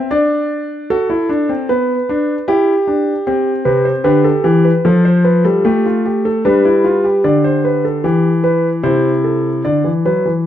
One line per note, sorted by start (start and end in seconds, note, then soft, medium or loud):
0.11 0.87 D4 medium
0.11 0.88 D5 medium
0.90 1.09 F#4 medium
0.90 1.67 A4 medium
1.10 1.29 E4 medium
1.29 1.49 D4 medium
1.49 1.68 C4 medium
1.69 1.94 B3 medium
1.69 2.46 B4 medium
2.09 2.34 D4 medium
2.48 2.72 E4 medium
2.48 3.24 G4 medium
2.88 3.12 D4 medium
3.27 4.03 C4 medium
3.27 3.51 G4 medium
3.65 3.90 C3 medium
3.65 3.85 B4 medium
3.85 4.04 C5 medium
4.04 4.29 D3 medium
4.04 4.42 G4 medium
4.04 4.24 B4 medium
4.24 4.44 A4 medium
4.44 4.69 E3 medium
4.44 4.64 G4 medium
4.65 4.84 B4 medium
4.85 5.43 F3 medium
4.85 5.84 F4 medium
4.85 5.04 A4 medium
5.05 5.24 C5 medium
5.24 5.44 B4 medium
5.45 5.64 G3 medium
5.45 5.64 A4 medium
5.65 6.42 A3 medium
5.65 5.84 G4 medium
5.86 6.05 F4 medium
6.05 6.25 G4 medium
6.25 6.45 A4 medium
6.45 7.22 G3 medium
6.45 6.64 D4 medium
6.45 7.22 B4 medium
6.65 6.84 E4 medium
6.85 7.04 F4 medium
7.04 8.03 G4 medium
7.24 8.02 D3 medium
7.24 7.44 D5 medium
7.44 7.64 C5 medium
7.65 7.84 B4 medium
7.85 8.04 A4 medium
8.04 8.81 E3 medium
8.04 8.29 G4 medium
8.44 8.69 B4 medium
8.83 9.62 C3 medium
8.83 9.62 E4 medium
8.83 9.09 C5 medium
9.24 9.49 A4 medium
9.65 9.84 D3 medium
9.65 9.89 D5 medium
9.84 10.04 E3 medium
10.05 10.24 F#3 medium
10.05 10.30 B4 medium
10.25 10.45 E3 medium